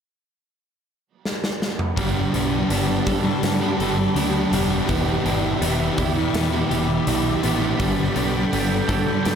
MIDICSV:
0, 0, Header, 1, 9, 480
1, 0, Start_track
1, 0, Key_signature, 1, "minor"
1, 0, Tempo, 728155
1, 1300, Time_signature, 4, 2, 24, 8
1, 6165, End_track
2, 0, Start_track
2, 0, Title_t, "Analog synth pad"
2, 0, Program_c, 0, 89
2, 1293, Note_on_c, 0, 83, 91
2, 1297, Note_on_c, 0, 74, 74
2, 1297, Note_on_c, 0, 81, 76
2, 1299, Note_on_c, 0, 67, 86
2, 3200, Note_off_c, 0, 81, 0
2, 3218, Note_on_c, 0, 76, 77
2, 5115, Note_off_c, 0, 67, 0
2, 5121, Note_off_c, 0, 76, 0
2, 5135, Note_on_c, 0, 69, 82
2, 5136, Note_on_c, 0, 79, 80
2, 6165, Note_off_c, 0, 69, 0
2, 6165, Note_off_c, 0, 74, 0
2, 6165, Note_off_c, 0, 79, 0
2, 6165, Note_off_c, 0, 83, 0
2, 6165, End_track
3, 0, Start_track
3, 0, Title_t, "Clean electric guitar"
3, 0, Program_c, 1, 27
3, 2029, Note_on_c, 1, 69, 67
3, 2270, Note_on_c, 1, 59, 59
3, 2501, Note_off_c, 1, 69, 0
3, 2509, Note_on_c, 1, 69, 69
3, 3221, Note_off_c, 1, 59, 0
3, 3225, Note_off_c, 1, 69, 0
3, 3463, Note_on_c, 1, 62, 57
3, 4183, Note_on_c, 1, 59, 62
3, 4659, Note_off_c, 1, 62, 0
3, 4662, Note_on_c, 1, 62, 58
3, 4897, Note_off_c, 1, 59, 0
3, 5855, Note_on_c, 1, 69, 72
3, 6093, Note_on_c, 1, 59, 65
3, 6165, Note_off_c, 1, 59, 0
3, 6165, Note_off_c, 1, 62, 0
3, 6165, Note_off_c, 1, 69, 0
3, 6165, End_track
4, 0, Start_track
4, 0, Title_t, "Overdriven electric guitar"
4, 0, Program_c, 2, 29
4, 1305, Note_on_c, 2, 55, 91
4, 1311, Note_on_c, 2, 59, 89
4, 1317, Note_on_c, 2, 62, 92
4, 1323, Note_on_c, 2, 67, 96
4, 1541, Note_off_c, 2, 55, 0
4, 1544, Note_on_c, 2, 55, 75
4, 1546, Note_off_c, 2, 59, 0
4, 1549, Note_on_c, 2, 59, 74
4, 1551, Note_off_c, 2, 62, 0
4, 1554, Note_off_c, 2, 67, 0
4, 1554, Note_on_c, 2, 62, 79
4, 1557, Note_on_c, 2, 67, 66
4, 1778, Note_off_c, 2, 55, 0
4, 1781, Note_on_c, 2, 55, 71
4, 1783, Note_off_c, 2, 59, 0
4, 1786, Note_on_c, 2, 59, 88
4, 1788, Note_off_c, 2, 62, 0
4, 1790, Note_on_c, 2, 62, 84
4, 1794, Note_off_c, 2, 67, 0
4, 1797, Note_on_c, 2, 67, 93
4, 2021, Note_off_c, 2, 55, 0
4, 2024, Note_on_c, 2, 55, 69
4, 2027, Note_off_c, 2, 59, 0
4, 2029, Note_on_c, 2, 59, 80
4, 2032, Note_off_c, 2, 62, 0
4, 2035, Note_on_c, 2, 62, 67
4, 2036, Note_off_c, 2, 67, 0
4, 2039, Note_on_c, 2, 67, 68
4, 2140, Note_off_c, 2, 67, 0
4, 2145, Note_off_c, 2, 62, 0
4, 2146, Note_off_c, 2, 59, 0
4, 2380, Note_on_c, 2, 67, 68
4, 2390, Note_on_c, 2, 62, 60
4, 2397, Note_on_c, 2, 59, 47
4, 2501, Note_off_c, 2, 55, 0
4, 2504, Note_on_c, 2, 55, 73
4, 2508, Note_off_c, 2, 59, 0
4, 2511, Note_on_c, 2, 59, 68
4, 2512, Note_off_c, 2, 62, 0
4, 2515, Note_on_c, 2, 62, 68
4, 2517, Note_off_c, 2, 67, 0
4, 2519, Note_on_c, 2, 67, 78
4, 2627, Note_off_c, 2, 67, 0
4, 2630, Note_off_c, 2, 62, 0
4, 2631, Note_off_c, 2, 59, 0
4, 2738, Note_off_c, 2, 55, 0
4, 2741, Note_on_c, 2, 55, 84
4, 2746, Note_on_c, 2, 59, 80
4, 2751, Note_on_c, 2, 62, 96
4, 2755, Note_on_c, 2, 67, 108
4, 2981, Note_off_c, 2, 55, 0
4, 2984, Note_on_c, 2, 55, 70
4, 2985, Note_off_c, 2, 59, 0
4, 2988, Note_on_c, 2, 59, 81
4, 2992, Note_off_c, 2, 62, 0
4, 2995, Note_off_c, 2, 67, 0
4, 2995, Note_on_c, 2, 62, 66
4, 2997, Note_on_c, 2, 67, 77
4, 3098, Note_off_c, 2, 67, 0
4, 3100, Note_on_c, 2, 67, 64
4, 3108, Note_off_c, 2, 62, 0
4, 3111, Note_on_c, 2, 62, 57
4, 3114, Note_off_c, 2, 59, 0
4, 3117, Note_on_c, 2, 59, 55
4, 3213, Note_off_c, 2, 55, 0
4, 3216, Note_on_c, 2, 52, 101
4, 3220, Note_off_c, 2, 59, 0
4, 3223, Note_on_c, 2, 59, 94
4, 3224, Note_off_c, 2, 62, 0
4, 3227, Note_on_c, 2, 64, 90
4, 3229, Note_off_c, 2, 67, 0
4, 3231, Note_on_c, 2, 67, 114
4, 3447, Note_off_c, 2, 52, 0
4, 3455, Note_on_c, 2, 52, 64
4, 3458, Note_off_c, 2, 59, 0
4, 3458, Note_off_c, 2, 64, 0
4, 3460, Note_on_c, 2, 59, 68
4, 3466, Note_on_c, 2, 64, 77
4, 3470, Note_off_c, 2, 67, 0
4, 3473, Note_on_c, 2, 67, 85
4, 3689, Note_off_c, 2, 52, 0
4, 3697, Note_on_c, 2, 52, 86
4, 3700, Note_off_c, 2, 64, 0
4, 3701, Note_off_c, 2, 59, 0
4, 3703, Note_on_c, 2, 59, 85
4, 3708, Note_on_c, 2, 64, 84
4, 3711, Note_off_c, 2, 67, 0
4, 3714, Note_on_c, 2, 67, 95
4, 3934, Note_off_c, 2, 52, 0
4, 3942, Note_on_c, 2, 52, 58
4, 3946, Note_off_c, 2, 59, 0
4, 3946, Note_off_c, 2, 64, 0
4, 3948, Note_on_c, 2, 59, 74
4, 3953, Note_on_c, 2, 64, 77
4, 3956, Note_off_c, 2, 67, 0
4, 3958, Note_on_c, 2, 67, 85
4, 4061, Note_off_c, 2, 64, 0
4, 4066, Note_off_c, 2, 67, 0
4, 4071, Note_off_c, 2, 59, 0
4, 4302, Note_off_c, 2, 52, 0
4, 4303, Note_on_c, 2, 67, 55
4, 4311, Note_on_c, 2, 64, 57
4, 4318, Note_on_c, 2, 59, 49
4, 4418, Note_on_c, 2, 52, 67
4, 4420, Note_off_c, 2, 59, 0
4, 4420, Note_off_c, 2, 64, 0
4, 4422, Note_on_c, 2, 59, 73
4, 4427, Note_on_c, 2, 64, 74
4, 4430, Note_off_c, 2, 67, 0
4, 4433, Note_on_c, 2, 67, 74
4, 4532, Note_off_c, 2, 64, 0
4, 4536, Note_off_c, 2, 67, 0
4, 4542, Note_off_c, 2, 59, 0
4, 4653, Note_off_c, 2, 52, 0
4, 4661, Note_on_c, 2, 52, 95
4, 4667, Note_on_c, 2, 59, 84
4, 4671, Note_on_c, 2, 64, 89
4, 4677, Note_on_c, 2, 67, 81
4, 4890, Note_off_c, 2, 52, 0
4, 4898, Note_on_c, 2, 52, 73
4, 4900, Note_off_c, 2, 64, 0
4, 4901, Note_off_c, 2, 59, 0
4, 4904, Note_on_c, 2, 59, 78
4, 4908, Note_on_c, 2, 64, 81
4, 4912, Note_off_c, 2, 67, 0
4, 4915, Note_on_c, 2, 67, 90
4, 5018, Note_off_c, 2, 67, 0
4, 5020, Note_off_c, 2, 64, 0
4, 5020, Note_on_c, 2, 67, 66
4, 5028, Note_on_c, 2, 64, 56
4, 5032, Note_off_c, 2, 59, 0
4, 5035, Note_on_c, 2, 59, 53
4, 5126, Note_off_c, 2, 52, 0
4, 5130, Note_off_c, 2, 64, 0
4, 5135, Note_on_c, 2, 55, 97
4, 5141, Note_off_c, 2, 59, 0
4, 5144, Note_on_c, 2, 59, 93
4, 5149, Note_on_c, 2, 62, 95
4, 5150, Note_off_c, 2, 67, 0
4, 5153, Note_on_c, 2, 67, 97
4, 5371, Note_off_c, 2, 55, 0
4, 5374, Note_on_c, 2, 55, 73
4, 5377, Note_off_c, 2, 59, 0
4, 5379, Note_on_c, 2, 59, 71
4, 5382, Note_off_c, 2, 62, 0
4, 5385, Note_on_c, 2, 62, 75
4, 5389, Note_off_c, 2, 67, 0
4, 5391, Note_on_c, 2, 67, 83
4, 5610, Note_off_c, 2, 55, 0
4, 5613, Note_on_c, 2, 55, 80
4, 5614, Note_off_c, 2, 59, 0
4, 5617, Note_on_c, 2, 59, 81
4, 5620, Note_off_c, 2, 62, 0
4, 5623, Note_on_c, 2, 62, 94
4, 5624, Note_off_c, 2, 67, 0
4, 5627, Note_on_c, 2, 67, 93
4, 5849, Note_off_c, 2, 55, 0
4, 5852, Note_on_c, 2, 55, 74
4, 5858, Note_off_c, 2, 59, 0
4, 5860, Note_on_c, 2, 59, 71
4, 5863, Note_off_c, 2, 62, 0
4, 5865, Note_on_c, 2, 62, 67
4, 5868, Note_off_c, 2, 67, 0
4, 5870, Note_on_c, 2, 67, 83
4, 5973, Note_off_c, 2, 67, 0
4, 5976, Note_off_c, 2, 62, 0
4, 5978, Note_off_c, 2, 59, 0
4, 6165, Note_off_c, 2, 55, 0
4, 6165, End_track
5, 0, Start_track
5, 0, Title_t, "Distorted electric guitar"
5, 0, Program_c, 3, 30
5, 1292, Note_on_c, 3, 43, 75
5, 1303, Note_on_c, 3, 50, 72
5, 1311, Note_on_c, 3, 55, 82
5, 1527, Note_off_c, 3, 43, 0
5, 1535, Note_on_c, 3, 43, 69
5, 1538, Note_off_c, 3, 50, 0
5, 1546, Note_on_c, 3, 50, 69
5, 1550, Note_off_c, 3, 55, 0
5, 1553, Note_on_c, 3, 55, 78
5, 1766, Note_off_c, 3, 43, 0
5, 1774, Note_on_c, 3, 43, 81
5, 1777, Note_off_c, 3, 50, 0
5, 1784, Note_on_c, 3, 50, 99
5, 1790, Note_off_c, 3, 55, 0
5, 1793, Note_on_c, 3, 55, 89
5, 1890, Note_off_c, 3, 55, 0
5, 1892, Note_on_c, 3, 55, 66
5, 1907, Note_off_c, 3, 50, 0
5, 1915, Note_on_c, 3, 50, 51
5, 2012, Note_off_c, 3, 43, 0
5, 2015, Note_off_c, 3, 50, 0
5, 2021, Note_off_c, 3, 55, 0
5, 2129, Note_on_c, 3, 55, 61
5, 2149, Note_on_c, 3, 50, 51
5, 2368, Note_off_c, 3, 55, 0
5, 2371, Note_on_c, 3, 55, 63
5, 2382, Note_off_c, 3, 50, 0
5, 2390, Note_on_c, 3, 50, 51
5, 2497, Note_on_c, 3, 43, 66
5, 2501, Note_off_c, 3, 50, 0
5, 2509, Note_on_c, 3, 50, 66
5, 2513, Note_off_c, 3, 55, 0
5, 2515, Note_on_c, 3, 55, 76
5, 2613, Note_off_c, 3, 55, 0
5, 2616, Note_on_c, 3, 55, 70
5, 2627, Note_off_c, 3, 50, 0
5, 2635, Note_on_c, 3, 50, 56
5, 2722, Note_off_c, 3, 43, 0
5, 2730, Note_on_c, 3, 43, 98
5, 2734, Note_off_c, 3, 50, 0
5, 2742, Note_on_c, 3, 50, 87
5, 2752, Note_off_c, 3, 55, 0
5, 2754, Note_on_c, 3, 55, 102
5, 2967, Note_off_c, 3, 43, 0
5, 2975, Note_on_c, 3, 43, 63
5, 2976, Note_off_c, 3, 50, 0
5, 2984, Note_on_c, 3, 50, 69
5, 2992, Note_off_c, 3, 55, 0
5, 2995, Note_on_c, 3, 55, 69
5, 3091, Note_off_c, 3, 55, 0
5, 3094, Note_on_c, 3, 55, 74
5, 3105, Note_off_c, 3, 50, 0
5, 3113, Note_on_c, 3, 50, 49
5, 3204, Note_off_c, 3, 43, 0
5, 3213, Note_off_c, 3, 50, 0
5, 3220, Note_on_c, 3, 40, 78
5, 3228, Note_on_c, 3, 47, 77
5, 3235, Note_off_c, 3, 55, 0
5, 3238, Note_on_c, 3, 52, 76
5, 3453, Note_off_c, 3, 40, 0
5, 3461, Note_on_c, 3, 40, 67
5, 3462, Note_off_c, 3, 47, 0
5, 3470, Note_off_c, 3, 52, 0
5, 3470, Note_on_c, 3, 47, 67
5, 3477, Note_on_c, 3, 52, 76
5, 3690, Note_off_c, 3, 40, 0
5, 3698, Note_on_c, 3, 40, 83
5, 3700, Note_off_c, 3, 47, 0
5, 3708, Note_on_c, 3, 47, 85
5, 3710, Note_off_c, 3, 52, 0
5, 3718, Note_on_c, 3, 52, 106
5, 3810, Note_off_c, 3, 52, 0
5, 3818, Note_on_c, 3, 52, 67
5, 3831, Note_off_c, 3, 47, 0
5, 3839, Note_on_c, 3, 47, 48
5, 3943, Note_off_c, 3, 40, 0
5, 3943, Note_off_c, 3, 47, 0
5, 3945, Note_off_c, 3, 52, 0
5, 4058, Note_on_c, 3, 52, 62
5, 4075, Note_on_c, 3, 47, 51
5, 4290, Note_off_c, 3, 52, 0
5, 4298, Note_on_c, 3, 52, 68
5, 4310, Note_off_c, 3, 47, 0
5, 4318, Note_on_c, 3, 47, 49
5, 4414, Note_on_c, 3, 40, 64
5, 4419, Note_off_c, 3, 47, 0
5, 4426, Note_off_c, 3, 52, 0
5, 4427, Note_on_c, 3, 47, 72
5, 4434, Note_on_c, 3, 52, 63
5, 4526, Note_off_c, 3, 52, 0
5, 4534, Note_on_c, 3, 52, 68
5, 4546, Note_off_c, 3, 47, 0
5, 4553, Note_on_c, 3, 47, 57
5, 4643, Note_off_c, 3, 40, 0
5, 4651, Note_off_c, 3, 47, 0
5, 4651, Note_on_c, 3, 40, 91
5, 4658, Note_on_c, 3, 47, 88
5, 4661, Note_off_c, 3, 52, 0
5, 4669, Note_on_c, 3, 52, 92
5, 4888, Note_off_c, 3, 40, 0
5, 4896, Note_on_c, 3, 40, 64
5, 4901, Note_off_c, 3, 47, 0
5, 4907, Note_off_c, 3, 52, 0
5, 4909, Note_on_c, 3, 47, 67
5, 4915, Note_on_c, 3, 52, 63
5, 5009, Note_off_c, 3, 52, 0
5, 5017, Note_on_c, 3, 52, 67
5, 5029, Note_off_c, 3, 47, 0
5, 5037, Note_on_c, 3, 47, 55
5, 5124, Note_off_c, 3, 40, 0
5, 5125, Note_off_c, 3, 52, 0
5, 5135, Note_off_c, 3, 47, 0
5, 5139, Note_on_c, 3, 43, 79
5, 5149, Note_on_c, 3, 50, 97
5, 5157, Note_on_c, 3, 55, 83
5, 5371, Note_off_c, 3, 43, 0
5, 5379, Note_on_c, 3, 43, 74
5, 5381, Note_off_c, 3, 50, 0
5, 5389, Note_on_c, 3, 50, 78
5, 5395, Note_off_c, 3, 55, 0
5, 5397, Note_on_c, 3, 55, 89
5, 5605, Note_off_c, 3, 43, 0
5, 5613, Note_on_c, 3, 43, 83
5, 5617, Note_off_c, 3, 50, 0
5, 5625, Note_on_c, 3, 50, 93
5, 5630, Note_off_c, 3, 55, 0
5, 5632, Note_on_c, 3, 55, 90
5, 5732, Note_off_c, 3, 55, 0
5, 5735, Note_on_c, 3, 55, 73
5, 5748, Note_off_c, 3, 50, 0
5, 5755, Note_on_c, 3, 50, 61
5, 5854, Note_off_c, 3, 43, 0
5, 5858, Note_off_c, 3, 50, 0
5, 5864, Note_off_c, 3, 55, 0
5, 5980, Note_on_c, 3, 55, 63
5, 6001, Note_on_c, 3, 50, 52
5, 6165, Note_off_c, 3, 50, 0
5, 6165, Note_off_c, 3, 55, 0
5, 6165, End_track
6, 0, Start_track
6, 0, Title_t, "Picked electric bass"
6, 0, Program_c, 4, 34
6, 1301, Note_on_c, 4, 31, 75
6, 1488, Note_off_c, 4, 31, 0
6, 1546, Note_on_c, 4, 35, 66
6, 1731, Note_off_c, 4, 35, 0
6, 1779, Note_on_c, 4, 31, 78
6, 1967, Note_off_c, 4, 31, 0
6, 2025, Note_on_c, 4, 43, 69
6, 2210, Note_off_c, 4, 43, 0
6, 2262, Note_on_c, 4, 43, 89
6, 2449, Note_off_c, 4, 43, 0
6, 2500, Note_on_c, 4, 31, 58
6, 2687, Note_off_c, 4, 31, 0
6, 2738, Note_on_c, 4, 38, 69
6, 2926, Note_off_c, 4, 38, 0
6, 2977, Note_on_c, 4, 28, 82
6, 3166, Note_off_c, 4, 28, 0
6, 3227, Note_on_c, 4, 28, 78
6, 3412, Note_off_c, 4, 28, 0
6, 3460, Note_on_c, 4, 31, 70
6, 3648, Note_off_c, 4, 31, 0
6, 3700, Note_on_c, 4, 28, 90
6, 3888, Note_off_c, 4, 28, 0
6, 3944, Note_on_c, 4, 40, 75
6, 4130, Note_off_c, 4, 40, 0
6, 4181, Note_on_c, 4, 40, 79
6, 4368, Note_off_c, 4, 40, 0
6, 4421, Note_on_c, 4, 28, 65
6, 4608, Note_off_c, 4, 28, 0
6, 4663, Note_on_c, 4, 35, 83
6, 4849, Note_off_c, 4, 35, 0
6, 4905, Note_on_c, 4, 33, 83
6, 5091, Note_off_c, 4, 33, 0
6, 5141, Note_on_c, 4, 31, 88
6, 5329, Note_off_c, 4, 31, 0
6, 5380, Note_on_c, 4, 35, 72
6, 5568, Note_off_c, 4, 35, 0
6, 5624, Note_on_c, 4, 31, 91
6, 5810, Note_off_c, 4, 31, 0
6, 5860, Note_on_c, 4, 43, 85
6, 6048, Note_off_c, 4, 43, 0
6, 6105, Note_on_c, 4, 43, 87
6, 6165, Note_off_c, 4, 43, 0
6, 6165, End_track
7, 0, Start_track
7, 0, Title_t, "Muted distorted electric guitar strokes"
7, 2020, Note_on_c, 9, 29, 40
7, 2086, Note_off_c, 9, 29, 0
7, 3951, Note_on_c, 9, 29, 38
7, 4017, Note_off_c, 9, 29, 0
7, 5862, Note_on_c, 9, 29, 39
7, 5927, Note_off_c, 9, 29, 0
7, 6165, End_track
8, 0, Start_track
8, 0, Title_t, "Muted overdriven electric guitar strokes"
8, 2142, Note_on_c, 9, 29, 43
8, 2208, Note_off_c, 9, 29, 0
8, 2629, Note_on_c, 9, 29, 45
8, 2695, Note_off_c, 9, 29, 0
8, 4068, Note_on_c, 9, 29, 52
8, 4134, Note_off_c, 9, 29, 0
8, 4538, Note_on_c, 9, 29, 42
8, 4604, Note_off_c, 9, 29, 0
8, 5976, Note_on_c, 9, 29, 53
8, 6042, Note_off_c, 9, 29, 0
8, 6165, End_track
9, 0, Start_track
9, 0, Title_t, "Drums"
9, 827, Note_on_c, 9, 38, 55
9, 893, Note_off_c, 9, 38, 0
9, 947, Note_on_c, 9, 38, 74
9, 1013, Note_off_c, 9, 38, 0
9, 1068, Note_on_c, 9, 38, 71
9, 1134, Note_off_c, 9, 38, 0
9, 1181, Note_on_c, 9, 45, 80
9, 1247, Note_off_c, 9, 45, 0
9, 1302, Note_on_c, 9, 36, 86
9, 1303, Note_on_c, 9, 46, 56
9, 1368, Note_off_c, 9, 36, 0
9, 1369, Note_off_c, 9, 46, 0
9, 1543, Note_on_c, 9, 46, 49
9, 1609, Note_off_c, 9, 46, 0
9, 1782, Note_on_c, 9, 46, 67
9, 1848, Note_off_c, 9, 46, 0
9, 2021, Note_on_c, 9, 46, 49
9, 2023, Note_on_c, 9, 36, 77
9, 2087, Note_off_c, 9, 46, 0
9, 2089, Note_off_c, 9, 36, 0
9, 2261, Note_on_c, 9, 46, 66
9, 2268, Note_on_c, 9, 38, 95
9, 2327, Note_off_c, 9, 46, 0
9, 2334, Note_off_c, 9, 38, 0
9, 2506, Note_on_c, 9, 46, 46
9, 2572, Note_off_c, 9, 46, 0
9, 2745, Note_on_c, 9, 46, 60
9, 2811, Note_off_c, 9, 46, 0
9, 2985, Note_on_c, 9, 46, 49
9, 3051, Note_off_c, 9, 46, 0
9, 3222, Note_on_c, 9, 46, 53
9, 3224, Note_on_c, 9, 36, 89
9, 3288, Note_off_c, 9, 46, 0
9, 3290, Note_off_c, 9, 36, 0
9, 3465, Note_on_c, 9, 46, 42
9, 3531, Note_off_c, 9, 46, 0
9, 3705, Note_on_c, 9, 46, 62
9, 3771, Note_off_c, 9, 46, 0
9, 3941, Note_on_c, 9, 46, 48
9, 3943, Note_on_c, 9, 36, 77
9, 4007, Note_off_c, 9, 46, 0
9, 4009, Note_off_c, 9, 36, 0
9, 4182, Note_on_c, 9, 46, 67
9, 4189, Note_on_c, 9, 38, 97
9, 4248, Note_off_c, 9, 46, 0
9, 4255, Note_off_c, 9, 38, 0
9, 4425, Note_on_c, 9, 46, 44
9, 4491, Note_off_c, 9, 46, 0
9, 4661, Note_on_c, 9, 46, 61
9, 4727, Note_off_c, 9, 46, 0
9, 4901, Note_on_c, 9, 46, 47
9, 4967, Note_off_c, 9, 46, 0
9, 5139, Note_on_c, 9, 46, 49
9, 5141, Note_on_c, 9, 36, 88
9, 5205, Note_off_c, 9, 46, 0
9, 5207, Note_off_c, 9, 36, 0
9, 5378, Note_on_c, 9, 46, 46
9, 5444, Note_off_c, 9, 46, 0
9, 5623, Note_on_c, 9, 46, 65
9, 5689, Note_off_c, 9, 46, 0
9, 5859, Note_on_c, 9, 46, 49
9, 5861, Note_on_c, 9, 36, 81
9, 5925, Note_off_c, 9, 46, 0
9, 5927, Note_off_c, 9, 36, 0
9, 6100, Note_on_c, 9, 46, 65
9, 6107, Note_on_c, 9, 38, 94
9, 6165, Note_off_c, 9, 38, 0
9, 6165, Note_off_c, 9, 46, 0
9, 6165, End_track
0, 0, End_of_file